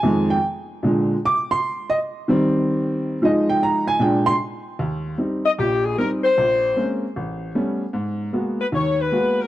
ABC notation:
X:1
M:4/4
L:1/8
Q:"Swing" 1/4=152
K:Eb
V:1 name="Saxophone section"
z8 | z8 | z8 | z3 e G A B c- |
c3 z4 z | z3 _c _d c2 B |]
V:2 name="Upright piano"
a g z4 d' c'- | c' e z6 | e g b a g c' z2 | z8 |
z8 | z8 |]
V:3 name="Upright piano" clef=bass
[F,,E,A,] z3 [B,,D,A,] z3 | z3 [E,G,C]4- [E,G,C] | [F,A,E]4 [B,,A,D] z3 | E,,2 [G,CE] z [B,,,B,,]2 [G,CE] z |
B,,,2 [A,B,C_D] z =A,,,2 [G,=A,=B,^C] z | A,,2 [A,B,_C_G] z [E,,E,]2 [A,B,CG] z |]